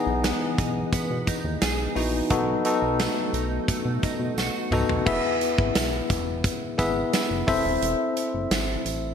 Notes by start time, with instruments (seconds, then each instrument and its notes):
Already playing: tine electric piano E3 B3 D#4 E4 G#4, clean electric guitar E3 D#4
0.07 analog synth bass B1
0.24 clean electric guitar B3, snare, closed hi-hat, tambourine
0.58 analog synth bass B1, clean electric guitar D#4, kick, closed hi-hat, tambourine
0.92 analog synth bass B2, clean electric guitar B3, kick, closed hi-hat, tambourine
1.10 analog synth bass B2
1.27 clean electric guitar D#4, kick, closed hi-hat, tambourine
1.44 analog synth bass D#2
1.62 analog synth bass B1, clean electric guitar G#4, snare, closed hi-hat, tambourine
1.95 analog synth bass A#1, tine electric piano B3 D#4 E4 F#4, clean electric guitar D#4, open hi-hat, tambourine
2.30 analog synth bass B1, clean electric guitar F#3, tine electric piano B3 D#4 F#4 A4, kick, closed hi-hat
2.65 tine electric piano B3 D#4 F#4 A4, clean electric guitar D#4, closed hi-hat, tambourine
2.82 analog synth bass B1
3.00 clean electric guitar A3, snare, closed hi-hat, tambourine
3.33 analog synth bass B1, clean electric guitar D#4, closed hi-hat, tambourine
3.68 analog synth bass B2, clean electric guitar A3, kick, closed hi-hat, tambourine
3.85 analog synth bass B2
4.03 clean electric guitar D#4, kick, closed hi-hat, tambourine
4.19 analog synth bass B2
4.37 analog synth bass B1, clean electric guitar F#4, snare, tambourine
4.71 analog synth bass C#2, tine electric piano B3 D#4 F#4 A4, clean electric guitar D#4, mid tom, tambourine
4.89 analog synth bass B1, floor tom
5.06 analog synth bass E1, tine electric piano B3 E4 G#4 B4 E5, kick, crash
5.41 closed hi-hat, tambourine
5.58 analog synth bass G#1, kick
5.75 analog synth bass B1, snare, closed hi-hat, tambourine
6.10 analog synth bass E1, kick, closed hi-hat, tambourine
6.44 kick, closed hi-hat, tambourine
6.78 analog synth bass G#1, tine electric piano B3 E4 G#4 B4 E5, kick, closed hi-hat, tambourine
7.13 snare, closed hi-hat, tambourine
7.31 analog synth bass F#1
7.47 analog synth bass E1, tine electric piano C4 E4 A4 C5 E5, kick, open hi-hat, tambourine
7.65 analog synth bass D#1
7.82 analog synth bass E1, closed hi-hat
8.17 closed hi-hat
8.34 analog synth bass F#1
8.51 analog synth bass G#1, snare, closed hi-hat, tambourine
8.85 analog synth bass A1, closed hi-hat, tambourine